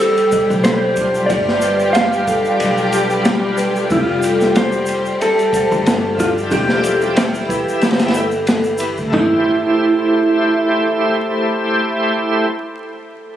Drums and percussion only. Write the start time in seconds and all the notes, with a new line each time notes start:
0.00 shaker
0.17 ride, shaker
0.32 kick, ride, shaker
0.51 shaker
0.64 snare, ride, shaker
0.96 kick, ride, shaker
1.15 shaker
1.30 kick, ride, shaker
1.48 snare
1.61 ride, shaker
1.80 shaker
1.94 snare, ride, shaker
2.13 shaker
2.27 kick, ride, shaker
2.45 shaker
2.60 ride, shaker
2.77 shaker
2.92 ride, shaker
3.10 shaker
3.25 snare, ride, shaker
3.57 ride, shaker
3.76 shaker
3.90 kick, ride, shaker
4.22 ride, shaker
4.41 snare, shaker
4.55 snare, ride, shaker
4.72 shaker
4.86 ride, shaker
5.06 shaker
5.21 ride, shaker
5.39 ride, shaker
5.53 kick, ride, shaker
5.72 shaker
5.86 snare, ride, shaker
6.18 kick, ride, shaker
6.38 shaker
6.51 kick, ride, shaker
6.69 snare
6.83 ride, shaker
7.01 shaker
7.16 snare, ride, shaker
7.35 shaker
7.49 kick, ride, shaker
7.69 shaker
7.81 snare, ride, shaker
7.91 snare, ride
7.99 snare, ride, shaker
8.08 snare, ride
8.14 shaker
8.31 shaker
8.47 snare, ride, shaker
8.64 shaker
8.78 ride, shaker
8.97 shaker
9.13 kick, floor tom, splash